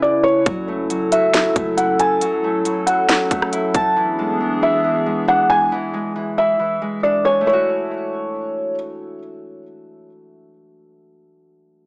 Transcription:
0.00 0.43 C#3 medium
0.00 3.92 C#4 medium
0.00 3.93 E4 medium
0.00 0.43 B4 medium
0.00 0.23 D5 medium
0.23 0.45 C#5 medium
0.46 1.52 F#1 loud
0.46 0.89 F#3 medium
0.46 3.93 F#3 medium
0.46 3.93 A4 medium
0.46 kick loud
0.46 closed hi-hat medium
0.68 1.55 A3 medium
0.90 1.33 F#3 medium
0.90 closed hi-hat medium
1.12 2.87 F#4 medium
1.12 1.74 E5 medium
1.12 closed hi-hat medium
1.34 2.20 F#3 medium
1.34 snare loud
1.34 closed hi-hat medium
1.56 2.19 F#1 loud
1.56 2.44 A3 medium
1.56 kick medium
1.56 closed hi-hat medium
1.77 3.53 E4 medium
1.77 1.98 F#5 medium
1.77 closed hi-hat medium
1.99 2.20 G#5 medium
1.99 3.44 A5 medium
1.99 closed hi-hat medium
2.21 2.65 F#3 medium
2.21 closed hi-hat medium
2.44 3.31 A3 medium
2.65 3.08 F#3 medium
2.65 closed hi-hat medium
2.87 5.31 F#4 medium
2.87 3.92 F#5 medium
2.87 closed hi-hat medium
3.09 4.02 F#3 medium
3.09 snare loud
3.09 closed hi-hat medium
3.31 4.25 A3 medium
3.31 kick medium
3.31 closed hi-hat medium
3.42 cross-stick medium
3.53 4.62 E4 medium
3.53 closed hi-hat medium
3.74 4.25 A5 medium
3.74 kick loud
3.74 closed hi-hat medium
3.96 4.39 E3 medium
3.96 5.70 E3 medium
3.96 5.70 B3 medium
3.96 5.70 D4 medium
3.96 5.70 G#4 medium
4.19 5.05 G#3 medium
4.40 4.83 E3 medium
4.62 6.38 E4 medium
4.62 5.24 E5 medium
4.84 5.71 E3 medium
5.06 5.93 G#3 medium
5.28 7.03 D4 medium
5.28 5.49 F#5 medium
5.50 5.71 G#5 medium
5.50 7.00 G#5 medium
5.72 6.14 E3 medium
5.94 6.80 G#3 medium
6.16 6.58 E3 medium
6.38 7.47 E4 medium
6.38 7.00 E5 medium
6.59 7.52 E3 medium
6.82 7.52 G#3 medium
7.03 9.84 D4 medium
7.03 7.24 D5 medium
7.25 7.46 C#5 medium
7.25 8.75 G#5 medium
7.41 10.74 A3 medium
7.47 10.47 E4 medium
7.47 8.74 C#5 medium
7.53 10.53 F#4 medium

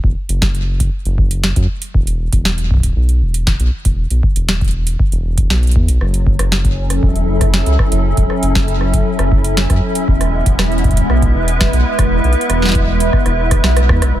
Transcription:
0.04 0.15 E1 medium
0.04 kick loud
0.29 0.90 F#1 medium
0.29 closed hi-hat medium
0.42 kick loud
0.42 snare loud
0.55 closed hi-hat soft
0.80 kick loud
0.80 closed hi-hat medium
1.05 1.53 F#1 medium
1.05 closed hi-hat soft
1.18 kick loud
1.31 closed hi-hat medium
1.44 snare loud
1.56 1.67 F#2 medium
1.56 kick loud
1.56 closed hi-hat medium
1.82 closed hi-hat medium
1.94 2.29 E1 medium
1.94 kick loud
2.07 closed hi-hat soft
2.33 2.93 E1 medium
2.33 kick loud
2.33 closed hi-hat medium
2.45 snare loud
2.58 closed hi-hat soft
2.71 kick loud
2.74 kick medium
2.77 kick medium
2.80 kick medium
2.80 closed hi-hat medium
2.83 kick soft
2.87 kick soft
2.90 kick soft
2.93 3.23 B1 medium
2.93 kick soft
3.09 closed hi-hat soft
3.22 3.57 E1 loud
3.34 closed hi-hat medium
3.47 kick loud
3.47 snare loud
3.60 3.70 B1 medium
3.60 closed hi-hat soft
3.85 4.07 E1 medium
3.85 kick loud
3.85 closed hi-hat medium
4.10 4.21 B1 medium
4.10 closed hi-hat soft
4.23 kick loud
4.36 4.96 E1 medium
4.36 closed hi-hat medium
4.49 snare loud
4.61 kick loud
4.61 closed hi-hat soft
4.64 closed hi-hat soft
4.68 closed hi-hat soft
4.71 closed hi-hat soft
4.87 closed hi-hat medium
4.99 kick loud
5.12 5.50 E1 loud
5.12 closed hi-hat soft
5.38 kick loud
5.38 closed hi-hat medium
5.50 5.77 B1 medium
5.50 snare loud
5.63 closed hi-hat soft
5.67 closed hi-hat soft
5.71 closed hi-hat soft
5.76 5.90 E2 medium
5.76 kick loud
5.88 5.99 B1 medium
5.88 closed hi-hat medium
6.01 6.36 F#1 loud
6.01 10.08 F#3 medium
6.01 cross-stick soft
6.14 closed hi-hat soft
6.27 kick loud
6.39 7.00 F#1 medium
6.39 cross-stick medium
6.39 closed hi-hat medium
6.52 snare loud
6.60 11.27 C#4 medium
6.65 kick loud
6.65 closed hi-hat soft
6.90 10.08 A4 medium
6.90 cross-stick soft
6.90 closed hi-hat medium
7.03 7.30 E1 loud
7.03 14.20 E5 medium
7.03 kick loud
7.16 14.20 E4 medium
7.16 closed hi-hat soft
7.28 7.63 F#1 loud
7.41 kick loud
7.41 cross-stick soft
7.41 closed hi-hat medium
7.54 snare loud
7.66 7.77 C#2 medium
7.66 closed hi-hat soft
7.79 kick loud
7.79 cross-stick medium
7.92 8.13 F#1 medium
7.92 closed hi-hat medium
8.17 8.28 E1 medium
8.17 kick loud
8.17 closed hi-hat soft
8.30 cross-stick soft
8.43 9.03 F#1 medium
8.43 closed hi-hat medium
8.55 kick loud
8.55 snare loud
8.68 closed hi-hat soft
8.81 cross-stick soft
8.94 kick loud
8.94 closed hi-hat medium
9.19 9.67 F#1 medium
9.19 cross-stick medium
9.19 closed hi-hat soft
9.32 kick loud
9.44 closed hi-hat medium
9.57 snare loud
9.70 9.81 F#2 medium
9.70 kick medium
9.70 cross-stick soft
9.70 closed hi-hat soft
9.95 closed hi-hat medium
10.08 10.43 E1 loud
10.08 14.15 G#3 medium
10.08 kick loud
10.21 14.20 B3 medium
10.21 cross-stick medium
10.21 closed hi-hat soft
10.46 11.07 E1 medium
10.46 kick loud
10.46 closed hi-hat medium
10.59 cross-stick medium
10.59 snare loud
10.72 closed hi-hat soft
10.78 closed hi-hat soft
10.84 kick loud
10.84 closed hi-hat soft
10.89 kick medium
10.89 closed hi-hat soft
10.93 kick medium
10.97 kick medium
10.97 closed hi-hat medium
11.01 kick soft
11.06 kick soft
11.10 11.37 B1 loud
11.10 cross-stick medium
11.22 kick loud
11.22 closed hi-hat soft
11.31 14.20 B4 medium
11.35 11.70 E1 loud
11.48 closed hi-hat medium
11.61 kick loud
11.61 cross-stick medium
11.61 snare loud
11.73 11.84 B1 medium
11.73 closed hi-hat soft
11.99 12.20 E1 medium
11.99 kick medium
11.99 cross-stick medium
11.99 closed hi-hat medium
12.24 12.35 B1 medium
12.24 closed hi-hat soft
12.33 closed hi-hat soft
12.41 closed hi-hat soft
12.50 13.10 E1 medium
12.50 cross-stick medium
12.50 closed hi-hat medium
12.62 snare medium
12.65 snare medium
12.69 snare medium
12.72 kick loud
12.72 snare medium
12.72 closed hi-hat soft
13.00 closed hi-hat medium
13.13 kick loud
13.13 cross-stick medium
13.26 13.63 E1 medium
13.26 cross-stick medium
13.26 closed hi-hat soft
13.51 kick loud
13.51 cross-stick medium
13.51 closed hi-hat medium
13.64 13.91 B1 medium
13.64 cross-stick medium
13.64 snare loud
13.77 cross-stick medium
13.77 closed hi-hat medium
13.89 14.04 E2 medium
13.89 kick loud
13.89 cross-stick loud
14.02 14.13 B1 medium
14.02 cross-stick medium
14.02 closed hi-hat medium
14.15 14.20 F#1 medium
14.15 14.20 F#3 medium
14.15 cross-stick soft

